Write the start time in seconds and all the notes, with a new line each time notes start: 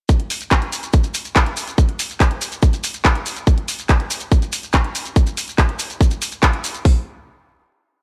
0.09 kick, closed hi-hat, maracas
0.20 closed hi-hat
0.30 open hi-hat, maracas
0.41 closed hi-hat, maracas
0.51 kick, clap, closed hi-hat, maracas
0.62 closed hi-hat
0.72 open hi-hat, maracas
0.83 closed hi-hat, maracas
0.93 kick, closed hi-hat, maracas
1.04 closed hi-hat, maracas
1.14 open hi-hat, maracas
1.25 closed hi-hat, maracas
1.35 kick, clap, closed hi-hat, maracas
1.46 closed hi-hat
1.57 open hi-hat, maracas
1.68 closed hi-hat, maracas
1.78 kick, closed hi-hat, maracas
1.89 closed hi-hat
1.99 open hi-hat, maracas
2.10 closed hi-hat, maracas
2.20 kick, clap, closed hi-hat, maracas
2.31 closed hi-hat
2.41 open hi-hat, maracas
2.52 closed hi-hat, maracas
2.62 kick, closed hi-hat, maracas
2.73 closed hi-hat, maracas
2.84 open hi-hat, maracas
2.94 closed hi-hat, maracas
3.05 kick, clap, closed hi-hat, maracas
3.15 closed hi-hat
3.26 open hi-hat, maracas
3.36 closed hi-hat, maracas
3.47 kick, closed hi-hat, maracas
3.58 closed hi-hat
3.68 open hi-hat, maracas
3.79 closed hi-hat, maracas
3.89 kick, clap, closed hi-hat, maracas
4.00 closed hi-hat
4.11 open hi-hat, maracas
4.20 closed hi-hat, maracas
4.32 kick, closed hi-hat, maracas
4.42 closed hi-hat, maracas
4.52 open hi-hat, maracas
4.63 closed hi-hat, maracas
4.73 kick, clap, closed hi-hat, maracas
4.84 closed hi-hat
4.95 open hi-hat, maracas
5.06 closed hi-hat, maracas
5.16 kick, closed hi-hat, maracas
5.27 closed hi-hat, maracas
5.37 open hi-hat, maracas
5.48 closed hi-hat, maracas
5.58 kick, clap, closed hi-hat, maracas
5.69 closed hi-hat
5.79 open hi-hat, maracas
5.90 closed hi-hat, maracas
6.01 kick, closed hi-hat, maracas
6.11 closed hi-hat, maracas
6.22 open hi-hat, maracas
6.32 closed hi-hat, maracas
6.42 kick, clap, closed hi-hat, maracas
6.53 closed hi-hat
6.64 open hi-hat, maracas
6.75 closed hi-hat, maracas
6.85 kick, open hi-hat